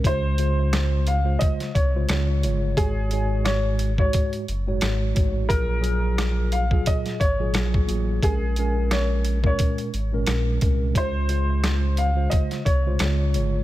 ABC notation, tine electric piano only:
X:1
M:4/4
L:1/16
Q:"Swing 16ths" 1/4=88
K:Db
V:1 name="Tine electric piano"
[D,A,Fc]2 [D,A,Fc]4- [D,A,Fc] [D,A,Fc]3 z [D,A,Fc] [D,A,Fd]2 [D,A,Fd]2 | [A,,A,Gd]2 [A,,A,Gd]4- [A,,A,Gd] [A,,A,Gd]3 z [A,,A,Gd]3 [A,,A,Gd]2 | [B,,G,A]2 [B,,G,FA]4- [B,,G,FA] [B,,G,FA]3 z [B,,G,FA] [B,,G,FA]2 [G,B,FA]2 | [B,,A,DB]2 [B,,A,DB]4- [B,,A,DB] [B,,A,DB]3 z [B,,A,DB]3 [B,,A,DB]2 |
[D,A,Fc]2 [D,A,Fc]4- [D,A,Fc] [D,A,Fc]3 z [D,A,Fc] [D,A,Fd]2 [D,A,Fd]2 |]